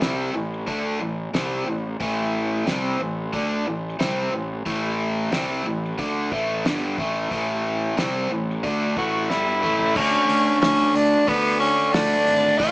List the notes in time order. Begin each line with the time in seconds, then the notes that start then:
0.01 C2 C3 G3 C4, snare, open hi-hat
0.34 A1 A2 E3
0.67 D2 D3 A3 D4, kick, open hi-hat
1.00 A1 A2 E3
1.34 C2 C3 G3 C4, snare, open hi-hat
1.67 A1 A2 E3
2.00 A1 A2 E3 A3, kick, open hi-hat
2.67 C2 C3 G3 C4, snare, open hi-hat
3.00 A1 A2 E3
3.33 D2 D3 A3 D4, kick, open hi-hat
3.66 A1 A2 E3
3.99 C2 C3 G3 C4, snare, open hi-hat
4.33 A1 A2 E3
4.66 A1 A2 E3 A3, kick, open hi-hat
5.32 C2 C3 G3 C4, snare, open hi-hat
5.66 A1 A2 E3
5.98 D2 D3 A3 D4, kick, open hi-hat
6.32 A1 A2 E3 A3, kick
6.65 G1 G2 D3 G3, snare, open hi-hat
6.98 A1 A2 E3 A3, kick
7.31 A1 A2 E3 A3, kick, open hi-hat
7.97 C2 C3 G3 C4, snare, open hi-hat
8.31 A1 A2 E3
8.63 D2 D3 A3 D4, kick, open hi-hat
8.97 A1 A2 E3 A3 F#4, kick
9.30 G1 G2 D3 G3 E4, snare
9.62 A1 A2 E3 A3, mid tom
9.80 floor tom
9.95 D2 D3 A3 C#4 D4, kick, crash
10.29 D2, open hi-hat
10.61 D2 C#4, snare, open hi-hat
10.95 D2 D4, open hi-hat
11.27 D2 D3 A3 B3 D4, kick, open hi-hat
11.60 C#4, open hi-hat
11.93 D2 D4, snare, open hi-hat
12.27 G#1, open hi-hat
12.59 A1 A2 E3 F#4, kick, open hi-hat
12.63 A3